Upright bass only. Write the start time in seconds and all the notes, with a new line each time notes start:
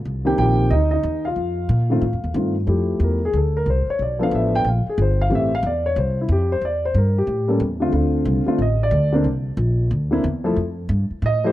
0.05 C2
0.38 A#1
0.71 D2
1.03 D#2
1.36 F2
1.69 A#2
2.02 A2
2.13 F2
2.24 D#2
2.34 G2
2.67 F2
3.00 E2
3.33 D2
3.66 C2
3.87 muted upright bass stroke
3.99 B1
4.31 A1
4.64 A#1
4.86 muted upright bass stroke
4.98 G1
5.30 A1
5.63 E2
5.96 C2
6.29 F2
6.61 E2
6.94 G2
7.27 A2
7.60 E2
7.92 D2
8.25 C2
8.46 muted upright bass stroke
8.58 A1
8.91 D2
9.24 C2
9.57 A#1
9.91 D2
10.24 E2
10.56 F2
10.89 G2
11.10 muted upright bass stroke
11.22 A2